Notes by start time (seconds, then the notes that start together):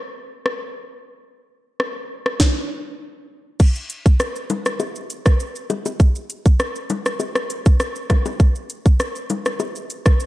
0.46 cross-stick
1.80 cross-stick
2.26 cross-stick
2.40 kick, snare
3.60 kick, crash, shaker
3.76 shaker
3.90 closed hi-hat, shaker
4.06 kick, shaker
4.20 cross-stick, shaker
4.36 shaker
4.50 closed hi-hat, low bongo, shaker
4.66 cross-stick, shaker
4.80 high bongo, shaker
4.96 shaker
5.10 closed hi-hat, shaker
5.26 kick, cross-stick, shaker
5.40 shaker
5.56 shaker
5.70 closed hi-hat, high bongo, low bongo, shaker
5.86 high bongo, shaker
6.00 kick, shaker
6.15 shaker
6.30 closed hi-hat, shaker
6.46 kick, shaker
6.60 cross-stick, shaker
6.76 shaker
6.90 closed hi-hat, low bongo, shaker
7.06 cross-stick, shaker
7.20 high bongo, shaker
7.35 cross-stick, shaker
7.50 closed hi-hat, shaker
7.66 kick, shaker
7.80 cross-stick, shaker
7.96 shaker
8.10 kick, cross-stick, closed hi-hat, high bongo, low bongo, shaker
8.26 high bongo, shaker
8.40 kick, shaker
8.55 shaker
8.70 closed hi-hat, shaker
8.86 kick, shaker
9.00 cross-stick, shaker
9.16 shaker
9.30 closed hi-hat, low bongo, shaker
9.46 cross-stick, shaker
9.60 high bongo, shaker
9.76 shaker
9.90 closed hi-hat, shaker
10.06 kick, cross-stick, shaker
10.20 shaker